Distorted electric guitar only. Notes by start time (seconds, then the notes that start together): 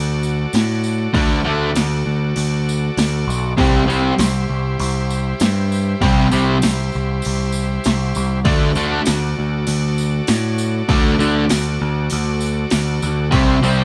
1.13 D3 A3 D4
1.45 D3 A3 D4
3.57 C3 G3 C4
3.87 C3 G3 C4
6.01 C3 G3 C4
6.31 C3 G3 C4
8.45 D3 A3 D4
8.75 D3 A3 D4
10.89 D3 A3 D4
11.19 D3 A3 D4
13.31 C3 G3 C4
13.63 C3 G3 C4